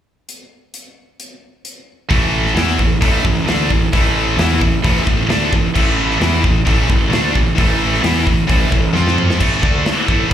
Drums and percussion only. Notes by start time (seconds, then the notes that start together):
0.29 closed hi-hat
0.74 closed hi-hat
1.20 closed hi-hat
1.65 closed hi-hat
2.11 kick, open hi-hat
2.46 snare
2.57 snare, open hi-hat
2.79 kick
3.02 kick, open hi-hat
3.25 kick
3.48 snare, open hi-hat
3.70 kick
3.93 kick, open hi-hat
4.39 snare, open hi-hat
4.61 kick
4.84 kick, open hi-hat
5.07 kick
5.30 snare, open hi-hat
5.53 kick
5.76 kick, crash
6.11 snare
6.21 snare, open hi-hat
6.44 kick
6.67 kick, open hi-hat
6.90 kick
7.13 snare, open hi-hat
7.35 kick
7.58 kick, open hi-hat
7.94 snare
8.04 snare, open hi-hat
8.27 kick
8.49 kick, open hi-hat
8.72 kick
8.95 snare
9.07 snare
9.18 mid tom
9.30 snare
9.41 kick, crash
9.63 kick
9.86 snare, open hi-hat
10.08 kick